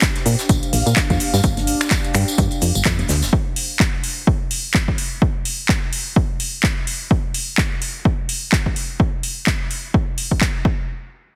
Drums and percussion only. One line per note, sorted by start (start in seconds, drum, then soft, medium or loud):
0.02 kick loud
0.02 snare loud
0.02 clap loud
0.02 closed hi-hat medium
0.02 shaker medium
0.02 shaker soft
0.15 snare soft
0.15 closed hi-hat soft
0.15 tambourine soft
0.26 open hi-hat medium
0.26 shaker medium
0.39 snare soft
0.39 closed hi-hat soft
0.39 tambourine medium
0.39 shaker soft
0.49 kick loud
0.49 closed hi-hat medium
0.49 tambourine medium
0.49 shaker medium
0.49 shaker soft
0.63 closed hi-hat soft
0.63 tambourine soft
0.73 open hi-hat loud
0.73 open hi-hat medium
0.73 shaker medium
0.87 closed hi-hat soft
0.87 tambourine medium
0.87 shaker soft
0.96 kick loud
0.96 snare loud
0.96 clap loud
0.96 closed hi-hat medium
0.96 tambourine medium
0.96 shaker medium
0.96 shaker soft
1.10 kick medium
1.10 closed hi-hat soft
1.10 tambourine soft
1.10 high conga medium
1.20 open hi-hat medium
1.20 shaker medium
1.34 snare soft
1.34 tambourine medium
1.34 shaker soft
1.43 kick loud
1.43 closed hi-hat medium
1.43 tambourine medium
1.43 shaker medium
1.43 shaker soft
1.57 closed hi-hat soft
1.57 tambourine soft
1.57 high conga soft
1.67 open hi-hat loud
1.67 shaker medium
1.81 finger snap medium
1.81 snare soft
1.81 closed hi-hat soft
1.81 tambourine medium
1.81 shaker soft
1.90 kick loud
1.90 snare medium
1.90 clap loud
1.90 closed hi-hat medium
1.90 tambourine medium
1.90 shaker medium
1.90 shaker soft
2.04 closed hi-hat soft
2.04 tambourine soft
2.14 finger snap medium
2.14 open hi-hat medium
2.14 shaker medium
2.15 shaker medium
2.28 closed hi-hat soft
2.28 tambourine medium
2.28 shaker soft
2.38 kick loud
2.38 closed hi-hat medium
2.38 shaker medium
2.38 shaker soft
2.51 closed hi-hat soft
2.51 tambourine soft
2.62 open hi-hat medium
2.62 shaker medium
2.75 closed hi-hat soft
2.75 tambourine medium
2.75 shaker soft
2.85 kick loud
2.85 snare loud
2.85 clap loud
2.85 closed hi-hat medium
2.85 tambourine medium
2.85 shaker medium
2.85 shaker soft
2.99 closed hi-hat soft
2.99 tambourine soft
2.99 high conga medium
3.08 open hi-hat medium
3.08 shaker medium
3.10 snare soft
3.10 shaker medium
3.22 snare soft
3.22 tambourine medium
3.22 shaker soft
3.33 kick loud
3.56 open hi-hat loud
3.80 kick loud
3.80 clap loud
4.04 open hi-hat medium
4.27 kick loud
4.51 open hi-hat medium
4.74 kick loud
4.74 clap loud
4.88 kick medium
4.98 open hi-hat medium
5.22 kick loud
5.45 open hi-hat medium
5.69 kick loud
5.69 clap loud
5.93 open hi-hat medium
6.16 kick loud
6.40 open hi-hat medium
6.63 kick loud
6.63 clap loud
6.87 open hi-hat medium
7.11 kick loud
7.34 open hi-hat medium
7.58 kick loud
7.58 clap loud
7.82 open hi-hat medium
8.05 kick loud
8.29 open hi-hat medium
8.52 kick loud
8.52 clap loud
8.66 kick medium
8.76 open hi-hat medium
9.00 kick loud
9.23 open hi-hat medium
9.47 kick loud
9.47 clap loud
9.71 open hi-hat medium
9.94 kick loud
10.18 open hi-hat medium
10.31 kick medium
10.41 kick loud
10.41 clap loud
10.65 kick loud